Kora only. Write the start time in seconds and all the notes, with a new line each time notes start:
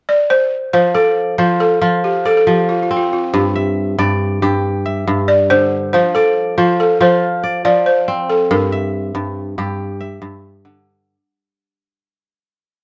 0.74 F3
0.95 D5
1.38 F3 C5
1.81 F3 F4
2.25 D5
2.47 F3
2.91 C4
3.33 G2
3.55 E5
3.98 G2 D5
4.42 G2 G4
4.86 E5
5.07 G2
5.51 D3
5.94 F3
6.15 D5
6.58 F3 C5
7.01 F3 F4
7.43 D5
7.65 F3
8.08 C4
8.51 G2
8.72 E5
9.15 G2
9.58 G2 G4
10.01 E5
10.22 G2
10.65 D3